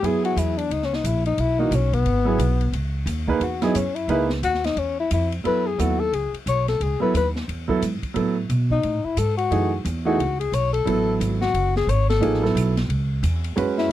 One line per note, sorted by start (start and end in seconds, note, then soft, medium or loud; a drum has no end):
0.02 0.36 F#2 medium
0.02 0.53 F#3 medium
0.02 0.54 B3 medium
0.02 0.54 E4 medium
0.02 0.54 G#4 medium
0.02 0.24 G#4 loud
0.02 ride medium
0.25 0.40 F#4 medium
0.25 ride soft
0.36 0.69 E2 medium
0.36 0.59 E4 medium
0.36 hi-hat pedal medium
0.36 ride medium
0.58 0.74 D4 medium
0.58 ride soft
0.70 1.03 C#2 medium
0.70 0.86 D#4 medium
0.70 ride medium
0.82 0.96 C#4 medium
0.82 snare soft
0.93 1.08 D#4 medium
0.93 snare soft
1.04 1.37 A#1 medium
1.04 1.26 E4 medium
1.04 hi-hat pedal medium
1.04 ride medium
1.26 1.42 D#4 medium
1.26 ride soft
1.38 1.70 B1 medium
1.38 1.61 E4 loud
1.38 ride medium
1.59 1.71 E3 medium
1.59 1.71 A#3 medium
1.59 1.76 D#4 medium
1.59 1.71 D#4 soft
1.59 1.71 F#4 medium
1.71 2.04 B1 medium
1.71 1.96 C#4 medium
1.71 hi-hat pedal medium
1.71 ride medium
1.93 2.74 B3 loud
1.93 kick medium
1.93 ride medium
2.05 2.38 G#1 medium
2.05 ride medium
2.25 2.38 F#3 medium
2.25 2.38 B3 medium
2.25 2.38 E4 medium
2.25 2.39 G#4 medium
2.38 2.72 B1 medium
2.38 hi-hat pedal medium
2.38 ride medium
2.61 ride soft
2.72 3.05 C#2 medium
2.72 ride medium
3.06 3.39 D#2 medium
3.06 hi-hat pedal medium
3.06 ride medium
3.27 3.40 A#3 medium
3.27 3.40 D#4 medium
3.27 3.40 G#4 medium
3.27 3.41 B4 medium
3.27 kick medium
3.40 3.73 E2 medium
3.40 3.65 F#4 medium
3.40 ride medium
3.62 3.74 F#3 medium
3.62 3.74 B3 medium
3.62 3.77 D#4 medium
3.62 3.74 E4 medium
3.62 3.75 G#4 medium
3.62 snare soft
3.62 ride soft
3.75 4.07 F#2 medium
3.75 3.96 C#4 medium
3.75 hi-hat pedal medium
3.75 ride medium
3.95 4.08 E4 medium
3.95 ride soft
4.08 4.41 C#2 medium
4.08 4.28 A#3 medium
4.08 4.28 D#4 medium
4.08 4.30 E4 medium
4.08 4.28 G#4 medium
4.08 4.29 B4 medium
4.08 ride medium
4.30 snare medium
4.43 4.75 D#2 medium
4.43 4.66 F#4 loud
4.43 hi-hat pedal medium
4.43 ride medium
4.54 snare soft
4.64 4.80 D#4 medium
4.64 snare medium
4.64 ride medium
4.76 5.09 E2 medium
4.76 4.98 C#4 medium
4.76 ride medium
5.00 5.11 E4 medium
5.11 5.44 F2 medium
5.11 5.32 E4 medium
5.11 hi-hat pedal soft
5.11 ride medium
5.32 ride soft
5.44 5.78 F#2 medium
5.44 5.63 F#3 medium
5.44 5.63 B3 soft
5.44 5.64 E4 medium
5.44 5.64 A4 medium
5.44 5.68 B4 loud
5.44 ride medium
5.66 5.82 G#4 medium
5.78 6.12 D#2 medium
5.78 5.97 F#3 soft
5.78 5.97 B3 soft
5.78 5.98 E4 soft
5.78 6.01 F#4 medium
5.78 5.98 A4 medium
5.78 hi-hat pedal medium
5.78 ride medium
6.00 6.16 A4 loud
6.13 6.32 C#2 medium
6.13 6.34 G#4 medium
6.13 ride medium
6.33 muted upright bass stroke soft
6.33 ride soft
6.46 6.79 B1 medium
6.46 6.67 C#5 medium
6.46 hi-hat pedal medium
6.46 ride medium
6.68 6.84 A4 medium
6.68 snare soft
6.68 ride soft
6.80 7.00 C#2 medium
6.80 7.01 G#4 medium
6.80 ride medium
7.00 7.12 F#3 medium
7.00 7.13 B3 medium
7.00 7.13 E4 medium
7.00 7.13 A4 medium
7.00 7.13 B4 medium
7.14 7.47 D#2 medium
7.14 7.28 B4 medium
7.14 hi-hat pedal medium
7.14 ride medium
7.36 snare soft
7.48 7.81 E2 medium
7.48 ride medium
7.68 7.80 F#3 medium
7.68 7.80 B3 medium
7.68 7.80 E4 medium
7.68 7.81 A4 medium
7.68 kick medium
7.82 8.01 G#2 medium
7.82 hi-hat pedal medium
7.82 ride medium
8.02 muted upright bass stroke soft
8.02 kick soft
8.02 ride soft
8.14 8.48 A2 medium
8.14 8.34 F#3 medium
8.14 8.34 B3 medium
8.14 8.34 E4 medium
8.14 8.35 A4 medium
8.14 ride medium
8.49 8.82 B2 medium
8.49 hi-hat pedal medium
8.49 ride medium
8.70 9.06 D#4 loud
8.70 kick soft
8.83 9.03 A2 medium
8.83 ride medium
9.05 9.20 E4 medium
9.05 muted upright bass stroke soft
9.17 9.50 G#2 medium
9.17 9.36 A4 loud
9.17 hi-hat pedal medium
9.17 ride medium
9.37 9.81 F#4 medium
9.37 ride soft
9.51 9.84 F#2 medium
9.51 9.70 E3 medium
9.51 9.70 A3 medium
9.51 9.70 D#4 medium
9.51 9.71 G#4 medium
9.51 ride medium
9.85 10.18 E2 medium
9.85 hi-hat pedal medium
9.85 ride medium
10.05 10.17 E3 medium
10.05 10.18 A3 medium
10.05 10.18 D#4 medium
10.05 10.37 F#4 medium
10.05 10.18 G#4 medium
10.19 10.52 C#2 medium
10.19 ride medium
10.40 10.56 G#4 medium
10.40 ride soft
10.52 10.85 B1 medium
10.52 10.72 C#5 loud
10.52 hi-hat pedal medium
10.52 ride medium
10.73 11.17 A4 medium
10.73 ride soft
10.85 11.19 A1 medium
10.85 11.37 F#3 medium
10.85 11.37 B3 medium
10.85 11.37 E4 medium
10.85 11.38 A4 medium
10.85 ride medium
11.20 11.53 G#1 medium
11.20 hi-hat pedal medium
11.20 ride medium
11.41 11.73 F#4 loud
11.41 snare soft
11.54 11.87 F#1 medium
11.54 ride medium
11.76 11.92 G#4 medium
11.76 snare soft
11.87 12.20 G#1 medium
11.87 12.09 C#5 loud
11.87 hi-hat pedal soft
11.87 ride medium
12.09 12.53 A4 medium
12.09 snare medium
12.09 ride soft
12.20 12.54 A1 medium
12.20 12.40 F3 medium
12.20 12.40 A#3 medium
12.20 12.41 D#4 medium
12.20 12.41 G#4 medium
12.20 ride medium
12.34 snare soft
12.41 12.72 F#3 medium
12.41 12.72 B3 medium
12.41 12.73 E4 medium
12.41 12.73 A4 medium
12.41 snare soft
12.55 12.88 B1 loud
12.55 hi-hat pedal medium
12.55 ride medium
12.77 snare soft
12.77 ride soft
12.89 13.22 C#2 medium
12.89 ride medium
13.23 13.56 E2 medium
13.23 hi-hat pedal medium
13.23 ride medium
13.44 ride medium
13.56 13.90 F#2 medium
13.56 13.89 G#3 medium
13.56 13.90 C#4 medium
13.56 13.90 F#4 medium
13.56 13.90 B4 medium
13.56 ride medium
13.78 13.92 E4 medium
13.78 snare soft